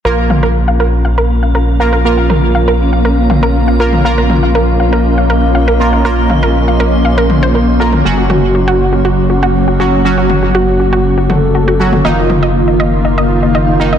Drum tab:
T2 |--o-------------|--o-------o----o|--o-------------|--o-------o----o|

T2 |--o-------------|--o-------o----o|--o-------------|